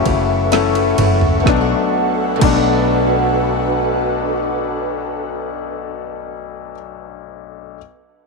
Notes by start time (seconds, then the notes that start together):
Already playing: C#3 A3 C#4 E4 F#4 A4 E5 F#5 C#6
0.06 F#1 E3 A3 C#4 F#4, kick, ride
0.52 F#2 C#3 E3 A3 C#4 E4 F#4 A4, snare, ride
0.75 E3 A3 C#4 F#4, ride
0.98 F#1 E3 A3 C#4 F#4, mid tom, ride
1.21 E3 A3 C#4 F#4, floor tom
1.40 B2 A3
1.46 B1 F#3 B3 D4 F#4 A4 B4 F#5, kick, snare
1.51 A3
1.56 D4
1.61 F#4
2.36 B2 A3
2.41 B1 F#3 B3 D4, kick, crash
2.47 A3
2.52 D4
2.57 F#4